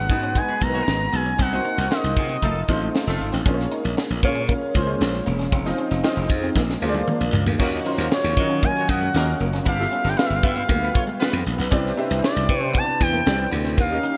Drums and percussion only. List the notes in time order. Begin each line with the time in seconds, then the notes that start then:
0.09 kick, closed hi-hat
0.23 closed hi-hat
0.35 kick, closed hi-hat
0.61 kick, closed hi-hat
0.74 closed hi-hat
0.88 snare
1.14 closed hi-hat
1.26 closed hi-hat
1.39 kick, closed hi-hat
1.65 closed hi-hat
1.79 snare, closed hi-hat
1.92 snare
2.04 closed hi-hat
2.16 kick, closed hi-hat
2.30 closed hi-hat
2.42 kick, closed hi-hat
2.56 closed hi-hat
2.68 kick, closed hi-hat
2.82 closed hi-hat
2.96 snare
3.07 closed hi-hat
3.21 closed hi-hat
3.32 snare, closed hi-hat
3.46 kick, closed hi-hat
3.60 snare
3.72 closed hi-hat
3.84 closed hi-hat
3.98 snare
4.10 closed hi-hat
4.23 kick, closed hi-hat
4.36 closed hi-hat
4.49 kick, closed hi-hat
4.74 kick, closed hi-hat
4.88 closed hi-hat
5.02 snare
5.14 closed hi-hat
5.27 closed hi-hat
5.39 snare, closed hi-hat
5.52 kick, closed hi-hat
5.65 snare, closed hi-hat
5.78 closed hi-hat
5.91 snare, closed hi-hat
6.04 snare
6.29 kick, closed hi-hat
6.43 closed hi-hat
6.56 kick, snare
6.69 snare
6.94 high tom
7.08 mid tom
7.33 floor tom
7.46 floor tom
7.60 kick, crash
7.72 closed hi-hat
7.86 closed hi-hat
7.99 snare, closed hi-hat
8.12 snare
8.36 kick, closed hi-hat
8.50 closed hi-hat
8.63 kick, closed hi-hat
8.76 closed hi-hat
8.88 kick, closed hi-hat
9.02 closed hi-hat
9.16 snare
9.41 closed hi-hat
9.53 snare, closed hi-hat
9.66 kick, closed hi-hat
9.81 snare
9.93 closed hi-hat
10.06 snare, closed hi-hat
10.19 snare
10.31 closed hi-hat
10.43 kick, closed hi-hat
10.57 closed hi-hat
10.69 kick, closed hi-hat
10.83 closed hi-hat
10.95 kick, closed hi-hat
11.09 closed hi-hat
11.22 snare
11.34 closed hi-hat
11.47 closed hi-hat
11.58 snare, closed hi-hat
11.72 kick, closed hi-hat
11.85 snare, closed hi-hat
11.98 closed hi-hat
12.11 snare, closed hi-hat
12.24 snare
12.48 kick, closed hi-hat
12.63 closed hi-hat
12.75 kick, closed hi-hat
13.00 kick, closed hi-hat
13.14 closed hi-hat
13.27 snare
13.52 closed hi-hat
13.64 snare, closed hi-hat
13.78 kick, closed hi-hat
13.90 closed hi-hat
14.04 closed hi-hat